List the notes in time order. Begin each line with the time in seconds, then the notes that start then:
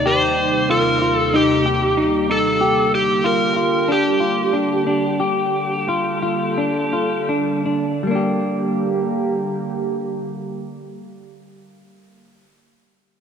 Already playing: D#2 C3 G3 A#3 D#4
0.06 G4 C5
0.70 F4 A#4
1.02 F4
1.17 A4
1.34 D#4 G4
1.66 G4
1.97 D#4
2.30 D#4 A4
2.61 D3 G4
2.95 G4
3.24 F4 A#4
3.56 F4
3.88 D4 G4
4.20 F4
4.53 D4
4.87 D4
5.20 G4 A4
5.89 F4
6.22 F4
6.58 D4
6.93 F4
7.29 D4
7.66 D4
8.02 D3 G3 A#3 G4
8.07 A#3 D4
8.15 G4